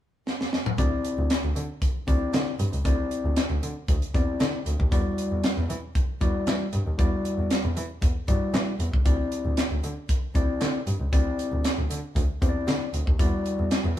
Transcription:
0.27 snare
0.41 snare
0.53 snare
0.66 mid tom
0.78 double bass D2, tine electric piano C4 E4 G4 D5, kick, closed hi-hat
1.05 closed hi-hat
1.18 double bass D2
1.30 snare, clap, closed hi-hat
1.44 double bass D2
1.56 double bass D3, closed hi-hat
1.82 kick, closed hi-hat
2.07 double bass D2, tine electric piano C4 E4 G4 D5, kick, closed hi-hat
2.33 double bass D3, snare, clap, closed hi-hat
2.59 double bass G2, closed hi-hat
2.73 double bass C#2, closed hi-hat
2.85 double bass D2, tine electric piano C4 E4 G4 D5, kick, closed hi-hat
3.11 closed hi-hat
3.25 double bass D2
3.36 snare, clap, closed hi-hat
3.50 double bass D2
3.63 double bass D3, closed hi-hat
3.88 double bass D2, kick, closed hi-hat
4.02 closed hi-hat
4.14 double bass E2, tine electric piano C4 E4 G4 D5, kick, closed hi-hat
4.40 double bass D3, snare, clap, closed hi-hat
4.66 double bass D2, closed hi-hat
4.80 double bass D#2, kick
4.91 double bass E2, tine electric piano G3 E4 F#4 D5, kick, closed hi-hat
5.18 closed hi-hat
5.32 double bass E2
5.44 snare, clap, closed hi-hat
5.58 double bass E2
5.69 double bass E3, closed hi-hat
5.95 kick, closed hi-hat
6.21 double bass E2, tine electric piano G3 E4 F#4 D5, kick, closed hi-hat
6.47 double bass E3, snare, clap, closed hi-hat
6.73 double bass G2, closed hi-hat
6.87 double bass D#2
6.98 double bass E2, tine electric piano G3 E4 F#4 D5, kick, closed hi-hat
7.25 closed hi-hat
7.38 double bass E2
7.50 snare, clap, closed hi-hat
7.64 double bass E2
7.76 double bass E3, closed hi-hat
8.02 double bass E2, kick, closed hi-hat
8.28 double bass G2, tine electric piano G3 E4 F#4 D5, kick, closed hi-hat
8.54 double bass E3, snare, clap, closed hi-hat
8.80 double bass E2, closed hi-hat
8.93 double bass C#2, kick
9.05 double bass D2, tine electric piano C4 E4 G4 D5, kick, closed hi-hat
9.32 closed hi-hat
9.45 double bass D2
9.57 snare, clap, closed hi-hat
9.71 double bass D2
9.83 double bass D3, closed hi-hat
10.09 kick, closed hi-hat
10.35 double bass D2, tine electric piano C4 E4 G4 D5, kick, closed hi-hat
10.61 double bass D3, snare, clap, closed hi-hat
10.87 double bass G2, closed hi-hat
11.00 double bass C#2
11.12 double bass D2, tine electric piano C4 E4 G4 D5, kick, closed hi-hat
11.39 closed hi-hat
11.52 double bass D2
11.64 snare, clap, closed hi-hat
11.78 double bass D2
11.90 double bass D3, closed hi-hat
12.16 double bass D2, kick, closed hi-hat
12.42 double bass E2, tine electric piano C4 E4 G4 C5, kick, closed hi-hat
12.49 tine electric piano D5
12.67 double bass D3, snare, clap, closed hi-hat
12.93 double bass D2, closed hi-hat
13.07 double bass D#2, kick
13.19 double bass E2, tine electric piano G3 E4 F#4 D5, kick, closed hi-hat
13.46 closed hi-hat
13.59 double bass E2
13.71 snare, clap, closed hi-hat
13.85 double bass E2

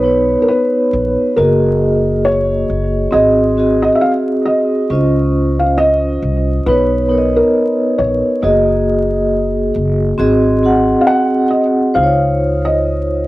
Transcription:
Already playing: upright bass B1, vibraphone B3 D#4 B4 C#5, felt piano B4
0.03 vibraphone B3 D#4 B4 C#5
0.42 felt piano A#4
0.48 felt piano B4
0.93 upright bass A#1
1.36 upright bass F#1, vibraphone A#3 F#4 G#4 D#5, felt piano A#4
2.25 felt piano C#5
2.70 upright bass F#1
3.11 upright bass G#1, vibraphone C4 F#4 G#4 D#5, felt piano D#5
3.57 vibraphone C4 F#4 G#4 D#5
3.82 felt piano D#5
3.95 felt piano E5
4.01 felt piano F5
4.46 felt piano D#5
4.90 upright bass C#2, vibraphone C#4 F4 C5 D#5
5.59 felt piano F5
5.77 felt piano D#5
6.23 upright bass C2
6.66 upright bass B1, vibraphone B3 D#4 B4 C#5, felt piano B4
7.09 vibraphone B3 D#4 A#4 C#5
7.18 vibraphone D#5
7.36 felt piano A#4
7.98 upright bass A#1, felt piano C#5
8.42 upright bass F#1, vibraphone A#3 F#4 G#4 D#5, felt piano D#5
9.76 upright bass F#1
10.18 upright bass G#1, vibraphone C4 F#4 G#4 D#5
10.63 vibraphone C4 F#4 G#4 F#5
11.01 felt piano F5
11.07 felt piano F#5
11.51 felt piano D#5
11.94 upright bass C#2, vibraphone D#4 F4 C5, felt piano F5
12.03 vibraphone C#5
12.65 felt piano D#5

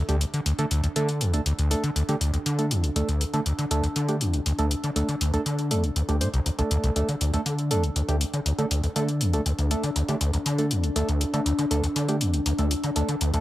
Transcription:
Already playing: ambient pad D4
0.09 acid bass D2, synth stab A3 D4 G4, closed hi-hat
0.21 acid bass C2, closed hi-hat
0.34 acid bass D3, closed hi-hat
0.46 acid bass D2, closed hi-hat
0.59 acid bass D3, synth stab A3 D4 A4, closed hi-hat
0.71 acid bass D2, closed hi-hat
0.84 acid bass D2, closed hi-hat
0.96 acid bass D3, synth stab A3 D4 A4, closed hi-hat
1.09 closed hi-hat
1.21 acid bass E2, closed hi-hat
1.34 acid bass C2, synth stab A3 D4 A4, closed hi-hat
1.46 acid bass D2, closed hi-hat
1.59 acid bass D2, closed hi-hat
1.71 acid bass C2, synth stab A3 D4 A4, closed hi-hat
1.84 acid bass D3, closed hi-hat
1.96 acid bass D2, closed hi-hat
2.09 acid bass D3, synth stab A3 D4 G4, closed hi-hat
2.21 acid bass D2, closed hi-hat
2.34 acid bass D2, closed hi-hat
2.46 acid bass D3, closed hi-hat
2.59 synth stab A3 D4 A4, closed hi-hat
2.71 acid bass E2, closed hi-hat
2.84 acid bass C2, closed hi-hat
2.96 acid bass D2, synth stab A3 D4 A4, closed hi-hat
3.09 acid bass D2, closed hi-hat
3.21 acid bass C2, closed hi-hat
3.34 acid bass D3, synth stab A3 D4 A4, closed hi-hat
3.46 acid bass D2, closed hi-hat
3.59 acid bass D3, closed hi-hat
3.71 acid bass D2, synth stab A3 D4 A4, closed hi-hat
3.84 acid bass D2, closed hi-hat
3.96 acid bass D3, closed hi-hat
4.09 synth stab A3 D4 G4, closed hi-hat
4.21 acid bass E2, closed hi-hat
4.34 acid bass C2, closed hi-hat
4.46 acid bass D2, closed hi-hat
4.59 acid bass D2, synth stab A3 D4 A4, closed hi-hat
4.71 acid bass C2, closed hi-hat
4.84 acid bass D3, closed hi-hat
4.96 acid bass D2, synth stab A3 D4 A4, closed hi-hat
5.09 acid bass D3, closed hi-hat
5.21 acid bass D2, closed hi-hat
5.34 acid bass D2, synth stab A3 D4 A4, closed hi-hat
5.46 acid bass D3, closed hi-hat
5.59 closed hi-hat
5.71 acid bass E2, synth stab A3 D4 A4, closed hi-hat
5.84 acid bass C2, closed hi-hat
5.96 acid bass D2, closed hi-hat
6.09 acid bass D2, synth stab A3 D4 G4, closed hi-hat
6.21 acid bass A2, synth stab A3 D4 C5, closed hi-hat
6.34 acid bass C2, closed hi-hat
6.46 acid bass D2, closed hi-hat
6.59 acid bass C2, synth stab A3 D4 A4, closed hi-hat
6.71 acid bass D2, closed hi-hat
6.84 acid bass C2, closed hi-hat
6.96 acid bass D2, synth stab A3 D4 A4, ambient pad D4, closed hi-hat
7.09 acid bass D3, closed hi-hat
7.21 acid bass D2, closed hi-hat
7.34 acid bass D2, synth stab A3 D4 A4, closed hi-hat
7.46 acid bass D3, closed hi-hat
7.59 closed hi-hat
7.71 acid bass E2, synth stab A3 D4 A4, closed hi-hat
7.84 acid bass C2, closed hi-hat
7.96 acid bass D2, closed hi-hat
8.09 acid bass D2, synth stab A3 D4 G4, closed hi-hat
8.21 acid bass C2, closed hi-hat
8.34 acid bass D3, closed hi-hat
8.46 acid bass D2, closed hi-hat
8.59 acid bass D3, synth stab A3 D4 A4, closed hi-hat
8.71 acid bass D2, closed hi-hat
8.84 acid bass D2, closed hi-hat
8.96 acid bass D3, synth stab A3 D4 A4, closed hi-hat
9.09 closed hi-hat
9.21 acid bass E2, closed hi-hat
9.33 acid bass C2, synth stab A3 D4 A4, closed hi-hat
9.46 acid bass D2, closed hi-hat
9.59 acid bass D2, closed hi-hat
9.71 acid bass C2, synth stab A3 D4 A4, closed hi-hat
9.84 acid bass D3, closed hi-hat
9.96 acid bass D2, closed hi-hat
10.09 acid bass D3, synth stab A3 D4 G4, closed hi-hat
10.21 acid bass D2, closed hi-hat
10.34 acid bass D2, closed hi-hat
10.46 acid bass D3, closed hi-hat
10.58 synth stab A3 D4 A4, closed hi-hat
10.71 acid bass E2, closed hi-hat
10.83 acid bass C2, closed hi-hat
10.96 acid bass D2, synth stab A3 D4 A4, closed hi-hat
11.08 acid bass D2, closed hi-hat
11.21 acid bass C2, closed hi-hat
11.33 acid bass D3, synth stab A3 D4 A4, closed hi-hat
11.46 acid bass D2, closed hi-hat
11.58 acid bass D3, closed hi-hat
11.71 acid bass D2, synth stab A3 D4 A4, closed hi-hat
11.83 acid bass D2, closed hi-hat
11.96 acid bass D3, closed hi-hat
12.09 synth stab A3 D4 G4, closed hi-hat
12.21 acid bass E2, closed hi-hat
12.34 acid bass C2, closed hi-hat
12.46 acid bass D2, closed hi-hat
12.58 acid bass D2, synth stab A3 D4 A4, closed hi-hat
12.71 acid bass C2, closed hi-hat
12.84 acid bass D3, closed hi-hat
12.96 acid bass D2, synth stab A3 D4 A4, closed hi-hat
13.09 acid bass D3, closed hi-hat
13.21 acid bass D2, closed hi-hat
13.34 acid bass D2, synth stab A3 D4 A4, closed hi-hat

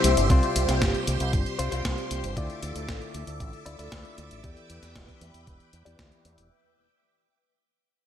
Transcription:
Already playing: clean electric guitar C3 G3 C4 E4 C5, string machine G4 C5 E5 C6
0.04 fingered electric bass C2, closed hi-hat
0.17 fingered electric bass G1, closed hi-hat
0.29 fingered electric bass C2, clean electric guitar C3 G3 C4 F4 C5, string machine C6, kick, closed hi-hat
0.43 closed hi-hat
0.56 fingered electric bass C2, closed hi-hat
0.69 fingered electric bass C2, snare, closed hi-hat
0.82 fingered electric bass G1, kick, snare, closed hi-hat
0.95 closed hi-hat
1.07 fingered electric bass C2, closed hi-hat
1.20 fingered electric bass C2, closed hi-hat
1.33 fingered electric bass G1, kick, closed hi-hat
1.46 closed hi-hat
1.59 fingered electric bass C2, clean electric guitar C3 G3 C4 F4 C5, closed hi-hat
1.71 fingered electric bass C2, clean electric guitar C3 G3 C4 F4 C5, closed hi-hat
1.85 fingered electric bass C2, kick, snare, closed hi-hat
1.98 closed hi-hat
2.11 fingered electric bass C2, closed hi-hat
2.24 fingered electric bass G1, closed hi-hat
2.36 fingered electric bass D2, clean electric guitar D3 A3 E4 F4 D5, string machine A4 E5 D6, kick, closed hi-hat
2.50 closed hi-hat
2.63 fingered electric bass D2, closed hi-hat
2.76 fingered electric bass D2, closed hi-hat
2.89 fingered electric bass A1, kick, snare, closed hi-hat
3.02 closed hi-hat
3.14 fingered electric bass D2, closed hi-hat
3.27 fingered electric bass D2, closed hi-hat
3.40 fingered electric bass A1, kick, closed hi-hat
3.53 closed hi-hat
3.66 fingered electric bass D2, clean electric guitar D3 A3 E4 F4 D5, closed hi-hat
3.79 fingered electric bass D2, clean electric guitar D3 A3 E4 F4 D5, closed hi-hat
3.92 fingered electric bass D2, kick, snare, closed hi-hat
4.05 closed hi-hat
4.18 fingered electric bass D2, closed hi-hat
4.31 fingered electric bass A1, closed hi-hat
4.43 fingered electric bass E2, clean electric guitar E3 B3 E4 G4 D5, string machine B4 G5, kick, closed hi-hat
4.57 closed hi-hat
4.70 fingered electric bass E2, closed hi-hat
4.83 fingered electric bass E2, snare, closed hi-hat
4.96 fingered electric bass E1, kick, snare, closed hi-hat
5.08 kick, closed hi-hat
5.21 fingered electric bass E2, closed hi-hat
5.34 fingered electric bass E2, closed hi-hat
5.47 fingered electric bass E1, kick, closed hi-hat
5.60 closed hi-hat
5.73 fingered electric bass E2, closed hi-hat
5.85 fingered electric bass E2, clean electric guitar E3 B3 E4 G4 D5, closed hi-hat
5.99 fingered electric bass D2, kick, snare, closed hi-hat
6.12 closed hi-hat
6.25 fingered electric bass E2, closed hi-hat
6.38 fingered electric bass E1, closed hi-hat

